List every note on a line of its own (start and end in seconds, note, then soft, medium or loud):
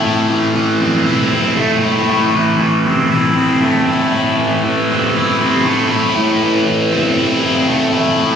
0.00 0.29 E3 medium
0.00 1.56 A3 medium
0.00 0.80 C4 medium
0.00 1.06 E4 medium
0.04 2.09 A2 medium
0.30 0.55 E3 medium
0.55 2.35 E3 medium
0.80 1.31 C4 medium
1.06 1.83 E4 medium
1.32 2.86 C4 medium
1.57 3.61 A3 medium
1.83 3.11 E4 medium
2.09 4.12 A2 medium
2.35 2.60 E3 medium
2.60 4.37 E3 medium
2.86 3.36 C4 medium
3.11 3.87 E4 medium
3.36 4.90 C4 medium
3.62 5.65 A3 medium
3.88 5.15 E4 medium
4.12 6.16 A2 medium
4.38 4.64 E3 medium
4.64 6.41 E3 medium
4.90 5.40 C4 medium
5.15 5.91 E4 medium
5.40 6.92 C4 medium
5.65 7.67 A3 medium
5.91 7.17 E4 medium
6.16 8.17 A2 medium
6.42 6.66 E3 medium
6.67 8.36 E3 medium
6.92 7.43 C4 medium
7.18 7.93 E4 medium
7.43 8.36 C4 medium
7.68 8.36 A3 medium
7.93 8.36 E4 medium
8.18 8.36 A2 medium